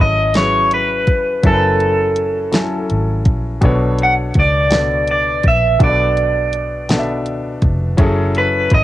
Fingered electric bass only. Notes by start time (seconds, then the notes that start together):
0.00 G#1
1.09 F1
1.45 F#1
2.91 G#1
3.27 A#1
3.63 B1
4.37 C#2
5.45 A#1
5.81 B1
7.28 C#2
7.63 F1
7.99 F#1
8.72 G#1